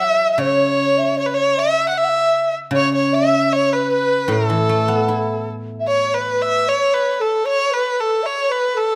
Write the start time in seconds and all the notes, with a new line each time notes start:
Already playing: E3 F#3
0.00 E5
0.04 E5
0.33 E5
0.38 C#3 C#5
0.98 E5
1.17 C#5
1.26 B4
1.33 C#5
1.58 E5
1.89 F#5
1.97 E5
2.04 F#5
2.09 E5
2.71 C#3 C#5
2.76 C#5
2.94 C#5
3.13 E5
3.51 C#5 E5
3.56 C#5
3.71 B4 C#5
3.75 B4
3.93 B4
4.28 A2 A4
4.32 A4
4.50 E3
4.69 A3
4.88 B3
5.08 E4
5.80 E5
5.88 C#5
6.14 B4 C#5
6.18 B4
6.42 E5
6.67 C#5
6.94 B4
7.20 A4
7.45 C#5
7.71 B4
7.98 A4 B4
8.02 A4
8.23 C#5 E5
8.50 B4
8.69 B4
8.74 A4